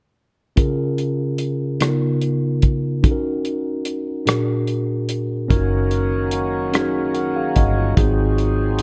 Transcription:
0.56 C#3 C#4 F4 G#4 A#4, kick, closed hi-hat
0.98 closed hi-hat
1.38 closed hi-hat
1.80 C#3 B3 D#4 F4 A4, cross-stick, closed hi-hat
1.88 A#4
2.22 closed hi-hat
2.62 kick, closed hi-hat
3.03 C#4 D#4 F#4 A4, kick, closed hi-hat
3.11 A#4
3.45 closed hi-hat
3.85 closed hi-hat
4.26 A#2 D4 F#4 G#4 A#4, cross-stick, closed hi-hat
4.67 closed hi-hat
5.09 closed hi-hat
5.48 F#1 D#3 F#3 A#3 C#4 D#4 F4 A#4, kick, closed hi-hat
5.56 F#4
5.91 closed hi-hat
6.31 closed hi-hat
6.73 C#4 D#4 F#4 G#4, cross-stick, closed hi-hat
6.81 A#4
7.14 A#4 F#5, closed hi-hat
7.36 G#4 F5
7.56 G1 F#4 D#5, kick, closed hi-hat
7.77 F4 C#5
7.96 G#1 G#2 D#3 G#3 B3 C4 D#4 F#4 G#4, kick, closed hi-hat
8.03 C4
8.38 closed hi-hat
8.79 closed hi-hat

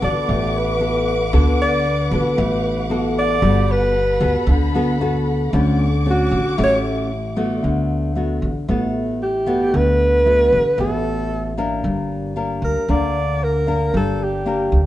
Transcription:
Already playing: D3 B4 F#5 D6
0.01 A1 B3 F#4 A4 D5
0.28 A1 A2
0.58 B4
0.80 B3 F#4 A4
1.33 D2 D3 B3 F#4 A4
1.62 D5
2.11 A1 B3 F#4 A4
2.15 B4
2.37 A1 A2
2.90 B3 F#4 A4
3.19 D5
3.42 G1 G3 B3 F#4 A4 B5
3.72 B4
4.20 D2 B3 F#4 A4
4.47 D2 D3
4.75 B3 F#4 A4
5.01 B3 F#4 A4
5.53 D2 D3 A3 C#4 F#4 D6
6.06 A3 C#4 F#4
6.11 F#4
6.31 A1
6.58 A1 A2 A3 C#4 F#4
6.64 C#5
7.36 A3 B3 F#4
7.62 D2 D3
8.15 A3 B3 F#4
8.42 A1
8.68 A1 A2 A3 B3 F#4
9.23 G4
9.46 A3 B3 F#4
9.74 D2 D3 B4
10.25 A3 B3 F#4
10.52 A1
10.78 A1 A2 A3 B3 F#4 A4
11.57 A#3 D4 A#4
11.83 G1 G3
12.36 A#3 D4 A#4
12.62 D2 A#4
12.88 D2 D3 A#3 D4 A#4 D5
13.44 A#4
13.67 A#3 D4 A#4
13.93 G1 G3 A4
14.24 G4
14.46 A#3 D4 A#4
14.72 D2

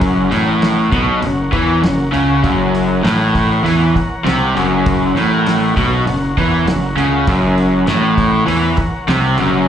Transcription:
Already playing: F#1 F#2 A#4 C#5 F#5
0.01 kick, open hi-hat
0.31 A1 A2, open hi-hat
0.62 snare, open hi-hat
0.92 B1 B2, kick, open hi-hat
1.21 F#1 F#2, open hi-hat
1.52 E2 E3, kick, open hi-hat
1.82 F#1 F#2, snare, open hi-hat
2.12 C#2 C#3, open hi-hat
2.41 F#1 F#2 A#4 C#5 F#5, kick, open hi-hat
2.75 open hi-hat
3.03 A1 A2, snare, open hi-hat
3.35 kick, open hi-hat
3.64 E2 E3, open hi-hat
3.95 muted overdriven electric guitar stroke, muted fingered electric bass stroke, kick, open hi-hat
4.25 C2 C3, snare, open hi-hat
4.55 F#1 F#2, open hi-hat
4.86 kick, open hi-hat
5.15 A1 A2, open hi-hat
5.47 snare, open hi-hat
5.77 B1 B2, kick, open hi-hat
6.06 F#1 F#2, open hi-hat
6.37 E2 E3, kick, open hi-hat
6.65 F#1 F#2, snare, open hi-hat
6.96 C#2 C#3, open hi-hat
7.26 F#1 F#2 A#4 C#5 F#5, kick, open hi-hat
7.58 open hi-hat
7.87 A1 A2, snare, open hi-hat
8.18 kick, open hi-hat
8.47 E2 E3, open hi-hat
8.77 muted overdriven electric guitar stroke, muted fingered electric bass stroke, kick, open hi-hat
9.08 C2 C3, snare, open hi-hat
9.38 F#1 F#2, open hi-hat

